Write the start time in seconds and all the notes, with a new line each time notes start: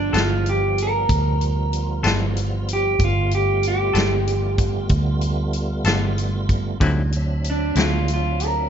Already playing: G1 F3 G3 B3 D4 F4
0.13 G1 G3 B3 F4 A4, snare, closed hi-hat
0.18 F4
0.46 G4, closed hi-hat
0.78 closed hi-hat
0.83 A#4
1.09 D2, kick, closed hi-hat
1.41 closed hi-hat
1.73 closed hi-hat
2.03 G1 G3 B3 F4 A4, snare, closed hi-hat
2.36 closed hi-hat
2.68 closed hi-hat
2.73 G4
2.99 G1 G3 A3 B3 F4, kick, closed hi-hat
3.04 F4
3.31 G4, closed hi-hat
3.63 closed hi-hat
3.68 G4
3.93 G1 G3 B3 F4 A4, closed hi-hat
3.98 snare
4.27 closed hi-hat
4.58 kick, closed hi-hat
4.89 D2, kick, closed hi-hat
5.21 closed hi-hat
5.53 closed hi-hat
5.84 G1 G3 B3 F4 A4, snare, closed hi-hat
6.18 closed hi-hat
6.49 kick, closed hi-hat
6.80 D2 D3 F#3 G3 C4 C#4 D#4 E4 F4, kick, closed hi-hat
7.12 F#3 C4 D4 E5, closed hi-hat
7.44 closed hi-hat
7.50 D4
7.75 D2 D3 F#3 C4 E4, snare, closed hi-hat
7.81 F4
8.08 closed hi-hat
8.14 F4
8.40 closed hi-hat
8.45 A#4